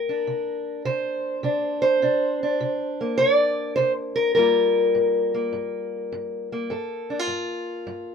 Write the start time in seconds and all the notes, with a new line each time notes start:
Already playing: C3 A#3 A#4
0.09 D4
0.27 C3
0.85 C3 C5
1.43 C3 D4
1.82 C5
2.02 C3 D4
2.43 D4
2.61 C3
3.01 A#3
3.18 C3 D5
3.76 C3 C5
4.16 A#4
4.35 G2 G3 A#3 F4 A#4
4.95 G2
5.34 A#3
5.53 G2
6.12 G2
6.52 A#3
6.70 G2 A4
7.10 D4
7.19 F4
7.27 G2
7.87 G2